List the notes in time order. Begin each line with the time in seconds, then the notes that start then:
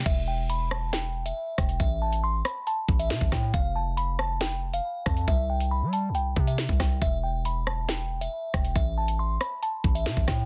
0.06 E1 E5, kick, closed hi-hat, crash
0.28 G5
0.49 B5, closed hi-hat
0.71 A5, cross-stick
0.93 G5, snare, closed hi-hat
1.26 E5, closed hi-hat
1.58 E1 G5, kick, cross-stick, closed hi-hat
1.69 closed hi-hat
1.80 A1 E5, kick, closed hi-hat
2.02 A5
2.13 closed hi-hat
2.24 C6
2.45 B5, cross-stick, closed hi-hat
2.67 A5, closed hi-hat
2.88 A1, kick
2.99 E5, closed hi-hat
3.10 C3, snare, closed hi-hat
3.21 A1, kick
3.32 A2 G5, kick, cross-stick, snare, closed hi-hat
3.54 F1 F5, kick, closed hi-hat
3.76 A5
3.97 B5, closed hi-hat
4.19 A5, cross-stick
4.41 G5, snare, closed hi-hat
4.73 F5, closed hi-hat
5.06 F2 A5, kick, cross-stick, closed hi-hat
5.17 closed hi-hat
5.28 C2 E5, kick, closed hi-hat
5.50 G5
5.60 closed hi-hat
5.71 B5
5.82 G3
5.93 A5, closed hi-hat
6.09 C2
6.15 G5, closed hi-hat
6.36 C3, kick
6.47 E5, closed hi-hat
6.58 snare, closed hi-hat
6.65 C2, kick, closed hi-hat
6.73 closed hi-hat
6.80 C2 G5, kick, cross-stick, snare, closed hi-hat
7.02 E1 E5, kick, closed hi-hat
7.23 G5
7.45 B5, closed hi-hat
7.67 A5, cross-stick
7.89 G5, snare, closed hi-hat
8.21 E5, closed hi-hat
8.54 E1 G5, kick, cross-stick, closed hi-hat
8.65 closed hi-hat
8.75 A1 E5, kick, closed hi-hat
8.98 A5
9.08 closed hi-hat
9.19 C6
9.41 B5, cross-stick, closed hi-hat
9.63 A5, closed hi-hat
9.84 A1, kick
9.95 E5, closed hi-hat
10.06 C3, snare, closed hi-hat
10.17 A1, kick
10.28 A2 G5, kick, cross-stick, snare, closed hi-hat